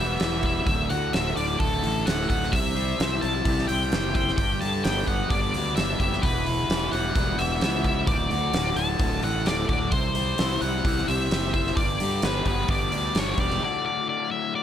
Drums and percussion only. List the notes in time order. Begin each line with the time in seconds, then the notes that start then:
0.20 snare, open hi-hat
0.43 kick, open hi-hat
0.67 kick, open hi-hat
0.90 open hi-hat
1.13 snare, open hi-hat
1.37 open hi-hat
1.60 kick, open hi-hat
1.84 open hi-hat
2.07 snare, open hi-hat
2.30 kick, open hi-hat
2.43 snare
2.53 kick, open hi-hat
2.76 open hi-hat
3.00 snare, open hi-hat
3.22 open hi-hat
3.45 kick, open hi-hat
3.58 snare
3.69 open hi-hat
3.92 snare, open hi-hat
4.15 kick, open hi-hat
4.28 snare
4.38 kick, open hi-hat
4.62 open hi-hat
4.84 snare, open hi-hat
5.07 kick, open hi-hat
5.30 kick, open hi-hat
5.54 open hi-hat
5.77 snare, open hi-hat
6.00 kick, open hi-hat
6.13 snare
6.23 kick, open hi-hat
6.46 open hi-hat
6.70 snare, open hi-hat
6.93 open hi-hat
7.16 kick, open hi-hat
7.39 open hi-hat
7.61 snare, open hi-hat
7.84 kick, open hi-hat
8.07 kick, open hi-hat
8.31 open hi-hat
8.53 snare, open hi-hat
8.77 open hi-hat
8.99 kick, open hi-hat
9.23 open hi-hat
9.46 snare, open hi-hat
9.69 kick, open hi-hat
9.92 kick, open hi-hat
10.15 open hi-hat
10.38 snare, open hi-hat
10.62 open hi-hat
10.85 kick, open hi-hat
10.98 snare
11.08 open hi-hat
11.31 snare, open hi-hat
11.54 kick, open hi-hat
11.67 snare
11.77 kick, open hi-hat
12.00 open hi-hat
12.22 snare, open hi-hat
12.46 kick, open hi-hat
12.68 kick, open hi-hat
12.92 open hi-hat
13.15 snare, open hi-hat
13.38 kick, open hi-hat
13.50 snare